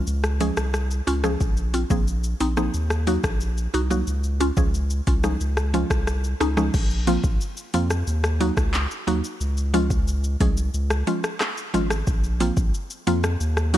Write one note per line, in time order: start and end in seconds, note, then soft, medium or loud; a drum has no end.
0.07 0.51 C#2 loud
0.07 shaker medium
0.24 cross-stick medium
0.24 shaker soft
0.41 0.54 F3 medium
0.41 0.54 G#3 medium
0.41 0.54 C#4 medium
0.41 0.54 G#4 medium
0.41 closed hi-hat medium
0.41 shaker medium
0.57 1.01 C2 medium
0.57 cross-stick loud
0.57 shaker medium
0.74 cross-stick medium
0.74 shaker medium
0.91 shaker medium
1.07 1.37 C#2 medium
1.07 1.14 C#4 medium
1.07 1.14 F4 loud
1.07 closed hi-hat medium
1.07 shaker soft
1.24 1.37 F3 medium
1.24 1.37 G#3 medium
1.24 1.37 C#4 medium
1.24 1.37 G#4 medium
1.24 cross-stick medium
1.24 shaker medium
1.41 1.85 A#1 loud
1.41 kick loud
1.41 shaker medium
1.57 shaker soft
1.74 1.80 C4 medium
1.74 1.81 F4 loud
1.74 closed hi-hat medium
1.74 shaker medium
1.90 2.35 A#1 loud
1.90 2.04 F3 medium
1.90 2.04 A#3 medium
1.90 2.04 C4 medium
1.90 2.04 G#4 medium
1.90 kick loud
1.90 shaker medium
2.08 shaker medium
2.24 shaker medium
2.40 2.70 A#1 medium
2.40 2.47 C4 medium
2.40 2.47 D#4 loud
2.40 closed hi-hat medium
2.40 shaker soft
2.57 2.71 F3 medium
2.57 2.71 A#3 medium
2.57 2.71 C4 medium
2.57 2.71 D#4 medium
2.57 cross-stick medium
2.57 shaker medium
2.74 3.18 D#2 loud
2.74 shaker medium
2.90 cross-stick medium
2.90 shaker soft
3.07 3.20 F#3 medium
3.07 3.21 A#3 medium
3.07 3.21 D#4 medium
3.07 3.21 F#4 loud
3.07 closed hi-hat medium
3.07 shaker medium
3.24 3.68 A#1 medium
3.24 kick medium
3.24 cross-stick loud
3.24 shaker medium
3.41 shaker medium
3.57 shaker medium
3.74 4.03 C2 loud
3.74 3.81 D#4 medium
3.74 3.81 F#4 medium
3.74 closed hi-hat medium
3.74 shaker soft
3.90 4.04 F#3 medium
3.90 4.04 A#3 medium
3.90 4.04 D#4 medium
3.90 4.04 F#4 medium
3.90 shaker medium
4.07 4.51 C#2 loud
4.07 shaker medium
4.24 shaker soft
4.40 4.47 C#4 medium
4.40 4.47 F4 loud
4.40 closed hi-hat medium
4.40 shaker medium
4.57 5.01 C#2 loud
4.57 4.71 F3 medium
4.57 4.71 G#3 medium
4.57 4.71 C#4 medium
4.57 4.71 G#4 medium
4.57 kick loud
4.57 shaker medium
4.74 shaker medium
4.90 shaker medium
5.07 5.37 C2 loud
5.07 5.14 C#4 medium
5.07 5.14 F4 medium
5.07 kick medium
5.07 closed hi-hat medium
5.07 shaker soft
5.24 5.37 F3 medium
5.24 5.37 G#3 medium
5.24 5.37 C#4 medium
5.24 5.37 D#4 medium
5.24 cross-stick medium
5.24 shaker medium
5.41 5.85 C#2 loud
5.41 shaker medium
5.57 cross-stick medium
5.57 shaker soft
5.74 5.87 F3 medium
5.74 5.87 G#3 medium
5.74 5.87 C#4 medium
5.74 5.87 F4 medium
5.74 closed hi-hat medium
5.74 shaker medium
5.90 6.35 C2 medium
5.90 kick medium
5.90 cross-stick loud
5.90 shaker medium
6.07 cross-stick medium
6.07 shaker medium
6.24 shaker medium
6.40 6.70 C#2 medium
6.40 6.47 C#4 medium
6.40 6.47 D#4 medium
6.40 cross-stick medium
6.40 closed hi-hat medium
6.40 shaker soft
6.57 6.70 F3 medium
6.57 6.71 G#3 medium
6.57 6.71 C#4 medium
6.57 6.71 D#4 medium
6.57 cross-stick loud
6.57 shaker medium
6.74 7.18 A#1 loud
6.74 kick loud
6.74 crash loud
6.74 shaker medium
6.90 shaker soft
7.07 7.21 F3 medium
7.07 7.21 A#3 medium
7.07 7.21 C4 medium
7.07 7.21 F4 loud
7.07 closed hi-hat medium
7.07 shaker medium
7.24 7.38 A#1 medium
7.24 kick loud
7.24 shaker medium
7.41 shaker medium
7.57 shaker medium
7.74 8.03 F2 medium
7.74 7.87 F3 medium
7.74 7.87 A#3 medium
7.74 7.87 C4 medium
7.74 7.87 F4 medium
7.74 closed hi-hat medium
7.74 shaker medium
7.90 cross-stick medium
7.90 shaker medium
8.07 8.51 D#2 loud
8.07 shaker medium
8.24 cross-stick loud
8.24 shaker medium
8.40 8.54 F#3 medium
8.40 8.54 A#3 medium
8.40 8.54 D#4 medium
8.40 8.54 F#4 loud
8.40 closed hi-hat medium
8.40 shaker medium
8.57 8.87 C#2 medium
8.57 kick medium
8.57 cross-stick loud
8.57 shaker medium
8.74 clap medium
8.74 shaker medium
8.91 shaker medium
9.07 9.22 D#2 medium
9.07 9.21 F#3 medium
9.07 9.21 A#3 medium
9.07 9.21 D#4 medium
9.07 9.21 F#4 loud
9.07 closed hi-hat medium
9.07 shaker soft
9.24 shaker medium
9.41 10.37 C#2 loud
9.41 shaker medium
9.57 shaker medium
9.74 9.87 F3 medium
9.74 9.87 G#3 medium
9.74 9.87 C#4 medium
9.74 9.87 F4 loud
9.74 closed hi-hat medium
9.74 shaker medium
9.90 kick loud
9.90 shaker medium
10.08 shaker medium
10.24 shaker medium
10.40 10.70 C2 medium
10.40 10.54 F3 medium
10.40 10.54 G#3 medium
10.40 10.54 C#4 medium
10.40 10.54 G#4 loud
10.40 kick loud
10.40 closed hi-hat medium
10.40 shaker medium
10.57 shaker medium
10.74 11.03 C#2 loud
10.74 shaker medium
10.90 cross-stick loud
10.90 shaker medium
11.07 11.21 F3 medium
11.07 11.21 G#3 medium
11.07 11.21 C#4 medium
11.07 11.21 F4 loud
11.07 closed hi-hat medium
11.07 shaker medium
11.24 cross-stick loud
11.24 shaker medium
11.41 cross-stick medium
11.41 clap medium
11.41 shaker medium
11.57 shaker medium
11.74 12.03 G#1 medium
11.74 11.87 F3 medium
11.74 11.87 G#3 medium
11.74 11.87 C#4 medium
11.74 11.87 F4 medium
11.74 closed hi-hat medium
11.74 shaker soft
11.90 cross-stick loud
11.90 shaker medium
12.07 12.51 A#1 loud
12.07 kick loud
12.07 shaker medium
12.24 shaker soft
12.40 12.54 F3 medium
12.40 12.54 A#3 medium
12.40 12.54 C4 medium
12.40 12.54 F4 loud
12.40 closed hi-hat medium
12.40 shaker medium
12.57 12.72 A#1 medium
12.57 kick loud
12.57 shaker medium
12.74 shaker medium
12.90 shaker medium
13.07 13.37 F2 medium
13.07 13.20 F3 medium
13.07 13.21 A#3 medium
13.07 13.21 C4 medium
13.07 13.21 F4 loud
13.07 closed hi-hat medium
13.07 shaker soft
13.24 cross-stick loud
13.24 shaker medium
13.40 13.78 D#2 loud
13.40 shaker medium
13.57 cross-stick medium
13.57 shaker medium
13.74 13.78 F#3 medium
13.74 13.78 A#3 medium
13.74 13.78 D#4 medium
13.74 13.78 F#4 loud
13.74 closed hi-hat medium
13.74 shaker medium